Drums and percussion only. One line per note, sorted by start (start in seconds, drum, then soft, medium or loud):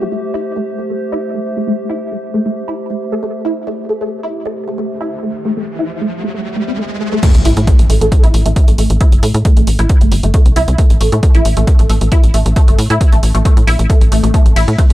7.23 kick loud
7.23 closed hi-hat medium
7.23 crash loud
7.35 closed hi-hat medium
7.45 open hi-hat loud
7.57 closed hi-hat medium
7.67 kick loud
7.67 closed hi-hat medium
7.79 closed hi-hat medium
7.90 open hi-hat loud
8.01 closed hi-hat medium
8.12 kick loud
8.12 closed hi-hat medium
8.24 closed hi-hat medium
8.34 open hi-hat loud
8.46 closed hi-hat medium
8.56 kick loud
8.56 closed hi-hat medium
8.68 closed hi-hat medium
8.78 open hi-hat loud
8.90 closed hi-hat medium
9.01 kick loud
9.01 closed hi-hat medium
9.12 closed hi-hat medium
9.23 open hi-hat loud
9.34 closed hi-hat medium
9.45 kick loud
9.45 closed hi-hat medium
9.57 closed hi-hat medium
9.67 open hi-hat loud
9.79 closed hi-hat medium
9.89 kick loud
9.89 closed hi-hat medium
10.01 closed hi-hat medium
10.12 open hi-hat loud
10.23 closed hi-hat medium
10.34 kick loud
10.34 closed hi-hat medium
10.46 closed hi-hat medium
10.56 open hi-hat loud
10.68 closed hi-hat medium
10.78 kick loud
10.78 closed hi-hat medium
10.90 closed hi-hat medium
11.01 open hi-hat loud
11.12 closed hi-hat medium
11.23 kick loud
11.23 closed hi-hat medium
11.35 closed hi-hat medium
11.45 open hi-hat loud
11.57 closed hi-hat medium
11.67 kick loud
11.67 closed hi-hat medium
11.79 closed hi-hat medium
11.89 open hi-hat loud
12.01 closed hi-hat medium
12.12 kick loud
12.12 closed hi-hat medium
12.23 closed hi-hat medium
12.34 open hi-hat loud
12.46 closed hi-hat medium
12.56 kick loud
12.56 closed hi-hat medium
12.68 closed hi-hat medium
12.79 open hi-hat loud
12.90 closed hi-hat soft
13.01 kick loud
13.01 closed hi-hat medium
13.12 closed hi-hat medium
13.23 open hi-hat loud
13.35 closed hi-hat medium
13.45 kick loud
13.45 closed hi-hat medium
13.57 closed hi-hat medium
13.68 open hi-hat loud
13.79 closed hi-hat medium
13.90 kick loud
13.90 closed hi-hat medium
14.01 closed hi-hat medium
14.12 open hi-hat loud
14.24 closed hi-hat medium
14.34 kick loud
14.34 closed hi-hat medium
14.46 closed hi-hat medium
14.56 open hi-hat loud
14.56 ride medium
14.68 closed hi-hat soft
14.78 kick loud
14.78 closed hi-hat medium